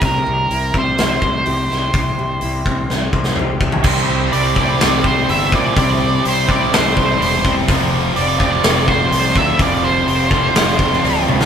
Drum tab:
CC |----------------|----------------|x---------------|----------------|
HH |o---o---o---o---|o---o-----------|----o---o---o---|o---o---o---o---|
SD |--------o-----o-|--------o--o----|--------o-------|--------o-------|
T1 |----------------|----------------|----------------|----------------|
T2 |----------------|------------o---|----------------|----------------|
FT |----------------|---------------o|----------------|----------------|
BD |o-----o---o-----|o-----o---o---o-|o-----o---o---o-|o-----o---o---o-|

CC |----------------|----------------|
HH |o---o---o---o---|o---o---o---o---|
SD |--------o-------|--------o--o---o|
T1 |----------------|--------------o-|
T2 |----------------|----------------|
FT |----------------|----------------|
BD |o-----o---o---o-|o-----o---o-----|